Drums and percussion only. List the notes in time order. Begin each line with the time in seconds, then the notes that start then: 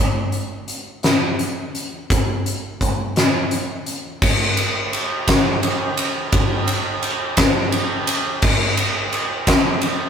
0.32 closed hi-hat
0.68 closed hi-hat
1.03 snare, closed hi-hat
1.39 closed hi-hat
1.75 closed hi-hat
2.10 kick, closed hi-hat
2.46 closed hi-hat
2.81 kick, closed hi-hat
3.16 snare, closed hi-hat
3.51 closed hi-hat
3.86 closed hi-hat
4.22 kick, crash
4.57 ride
4.93 ride
5.28 kick, snare, ride
5.63 ride
5.97 ride
6.32 kick, ride
6.68 ride
7.03 ride
7.37 kick, snare, ride
7.72 ride
8.07 ride
8.42 kick, crash
8.77 ride
9.12 ride
9.47 kick, snare, ride
9.81 ride